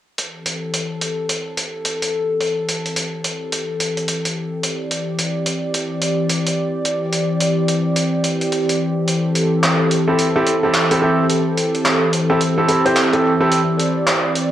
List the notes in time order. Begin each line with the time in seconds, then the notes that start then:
0.18 E3 C4 G4 A4, closed hi-hat
0.46 closed hi-hat
0.74 closed hi-hat
1.02 closed hi-hat
1.29 closed hi-hat
1.57 closed hi-hat
1.85 closed hi-hat
2.02 closed hi-hat
2.41 closed hi-hat
2.69 closed hi-hat
2.86 closed hi-hat
2.96 closed hi-hat
3.24 closed hi-hat
3.52 closed hi-hat
3.80 closed hi-hat
3.97 closed hi-hat
4.08 closed hi-hat
4.25 closed hi-hat
4.63 D5, closed hi-hat
4.91 closed hi-hat
5.18 closed hi-hat
5.46 closed hi-hat
5.74 closed hi-hat
6.02 closed hi-hat
6.30 closed hi-hat
6.47 closed hi-hat
6.85 closed hi-hat
7.13 closed hi-hat
7.41 closed hi-hat
7.68 closed hi-hat
7.96 closed hi-hat
8.24 closed hi-hat
8.41 closed hi-hat
8.52 closed hi-hat
8.69 closed hi-hat
9.08 A4, closed hi-hat
9.35 closed hi-hat
9.63 clap, closed hi-hat
9.91 closed hi-hat
10.07 C4 E4 G4 A4
10.19 closed hi-hat
10.36 C4 E4 G4 A4
10.47 closed hi-hat
10.63 C4 E4 G4 A4
10.74 clap, closed hi-hat
10.91 C4 E4 G4 A4, closed hi-hat
11.02 C4 E4 G4 A4
11.30 closed hi-hat
11.58 closed hi-hat
11.75 closed hi-hat
11.85 clap, closed hi-hat
12.13 closed hi-hat
12.30 C4 E4 G4 A4
12.41 closed hi-hat
12.58 C4 E4 G4 A4
12.68 C4 E4 G4 A4, closed hi-hat
12.85 C4 E4 G4 C5, closed hi-hat
12.96 clap, closed hi-hat
13.13 C4 E4 G4 A4, clap, closed hi-hat
13.41 C4 E4 G4 A4
13.52 D5, closed hi-hat
13.80 closed hi-hat
14.07 clap, closed hi-hat
14.35 closed hi-hat